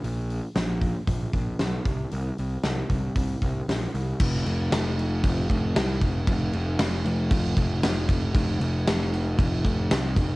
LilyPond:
<<
  \new Staff \with { instrumentName = "Picked electric bass" } { \clef bass \time 4/4 \key c \phrygian \tempo 4 = 116 bes,,4 bes,,4 bes,,8 bes,,8 b,,8 c,8 | c,8 c,8 c,8 c,8 c,8 c,8 bes,,8 c,8 | f,,8 f,,8 f,,4 f,,8 f,,8 c,8 f,,8 | f,,8 f,,8 f,,8 f,,8 f,,8 f,,8 f,,4 |
f,,8 f,,8 f,,4 f,,8 f,,8 c,8 f,,8 | }
  \new DrumStaff \with { instrumentName = "Drums" } \drummode { \time 4/4 hho8 hho8 <hho sn>8 <hho bd>8 <hho bd>8 <hho bd>8 <hho sn>8 <hho bd>8 | hho8 hho8 <hho sn>8 <hho bd>8 <hho bd>8 <hho bd>8 <hho sn>8 hho8 | <cymc bd>8 cymc8 <cymc sn>8 cymc8 <cymc bd>8 <cymc bd>8 <cymc sn>8 <cymc bd>8 | <cymc bd>8 cymc8 <cymc sn>8 cymc8 <cymc bd>8 <cymc bd>8 <cymc sn>8 <cymc bd>8 |
<cymc bd>8 cymc8 <cymc sn>8 cymc8 <cymc bd>8 <cymc bd>8 <cymc sn>8 <cymc bd>8 | }
>>